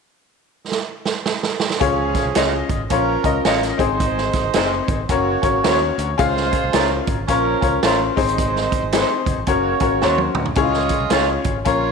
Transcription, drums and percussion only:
0.72 snare
1.05 snare
1.26 snare
1.43 snare
1.60 snare
1.70 snare
1.81 kick, closed hi-hat
2.15 kick, snare, closed hi-hat
2.35 snare, closed hi-hat
2.69 kick, closed hi-hat
2.90 kick, closed hi-hat
3.24 kick, closed hi-hat
3.45 snare, closed hi-hat
3.63 snare, closed hi-hat
3.79 kick, closed hi-hat
4.00 kick, closed hi-hat
4.18 snare
4.33 kick, snare, closed hi-hat
4.54 snare, closed hi-hat
4.88 kick, closed hi-hat
5.09 kick, closed hi-hat
5.43 kick, closed hi-hat
5.64 snare, closed hi-hat
5.99 closed hi-hat
6.19 kick, closed hi-hat
6.37 snare
6.53 kick, closed hi-hat
6.73 snare, closed hi-hat
7.07 kick, closed hi-hat
7.28 kick, closed hi-hat
7.62 kick, closed hi-hat
7.83 snare, closed hi-hat
8.17 kick, open hi-hat
8.29 closed hi-hat
8.38 kick, closed hi-hat
8.56 snare
8.72 kick, closed hi-hat
8.92 snare, closed hi-hat
9.26 kick, closed hi-hat
9.47 kick, closed hi-hat
9.80 kick, closed hi-hat
10.01 snare
10.18 high tom
10.35 mid tom
10.45 floor tom
10.55 kick, closed hi-hat
10.73 snare
10.89 kick, closed hi-hat
11.10 snare, closed hi-hat
11.44 kick, closed hi-hat
11.65 kick, closed hi-hat

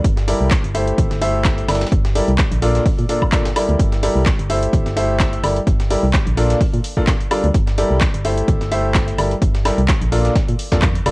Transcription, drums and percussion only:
0.04 kick, closed hi-hat
0.17 snare, closed hi-hat
0.28 closed hi-hat, open hi-hat
0.51 kick, snare, clap, closed hi-hat
0.64 closed hi-hat
0.75 closed hi-hat, open hi-hat
0.88 closed hi-hat
0.98 kick, closed hi-hat
1.11 snare, closed hi-hat
1.22 closed hi-hat, open hi-hat
1.45 kick, snare, clap, closed hi-hat
1.58 closed hi-hat
1.68 snare, closed hi-hat, open hi-hat, high woodblock
1.75 snare, closed hi-hat
1.81 snare, closed hi-hat
1.87 snare, closed hi-hat
1.92 kick, closed hi-hat
2.05 snare, closed hi-hat
2.15 closed hi-hat, open hi-hat
2.28 closed hi-hat
2.38 kick, snare, clap, closed hi-hat
2.52 closed hi-hat
2.62 closed hi-hat, open hi-hat
2.75 snare, closed hi-hat
2.86 kick, closed hi-hat, open hi-hat
2.98 closed hi-hat
3.09 closed hi-hat, open hi-hat
3.22 kick, high woodblock
3.32 kick, snare, clap, closed hi-hat
3.45 snare, closed hi-hat
3.56 closed hi-hat, open hi-hat, high woodblock
3.69 closed hi-hat
3.79 kick, closed hi-hat
3.92 snare, closed hi-hat
4.03 closed hi-hat, open hi-hat
4.26 kick, snare, clap, closed hi-hat
4.39 closed hi-hat
4.50 closed hi-hat, open hi-hat
4.63 closed hi-hat
4.73 kick, closed hi-hat
4.86 snare, closed hi-hat
4.97 closed hi-hat, open hi-hat
5.20 kick, snare, clap, closed hi-hat
5.33 closed hi-hat
5.44 closed hi-hat, open hi-hat, high woodblock
5.56 closed hi-hat
5.67 kick, closed hi-hat
5.80 snare, closed hi-hat
5.90 closed hi-hat, open hi-hat
6.13 kick, snare, clap, closed hi-hat
6.27 closed hi-hat
6.37 closed hi-hat, open hi-hat
6.50 snare, closed hi-hat
6.61 kick, closed hi-hat, open hi-hat
6.74 closed hi-hat
6.84 closed hi-hat, open hi-hat
6.97 kick
7.07 kick, snare, clap, closed hi-hat
7.20 closed hi-hat
7.31 closed hi-hat, open hi-hat, high woodblock
7.44 closed hi-hat
7.54 kick, closed hi-hat
7.67 snare, closed hi-hat
7.78 closed hi-hat, open hi-hat
8.01 kick, snare, clap, closed hi-hat
8.14 closed hi-hat
8.25 closed hi-hat, open hi-hat
8.38 closed hi-hat
8.48 kick, closed hi-hat
8.61 snare, closed hi-hat
8.72 closed hi-hat, open hi-hat
8.95 kick, snare, clap, closed hi-hat
9.08 closed hi-hat
9.18 closed hi-hat, open hi-hat, high woodblock
9.31 closed hi-hat
9.42 kick, closed hi-hat
9.55 snare, closed hi-hat
9.65 snare, closed hi-hat, open hi-hat, high woodblock
9.78 closed hi-hat
9.88 kick, snare, clap, closed hi-hat
10.02 closed hi-hat
10.12 closed hi-hat, open hi-hat
10.25 snare, closed hi-hat
10.36 kick, snare, closed hi-hat
10.48 closed hi-hat
10.59 closed hi-hat, open hi-hat
10.72 kick, snare, closed hi-hat
10.82 kick, clap, closed hi-hat
10.95 closed hi-hat
11.06 closed hi-hat, open hi-hat, high woodblock

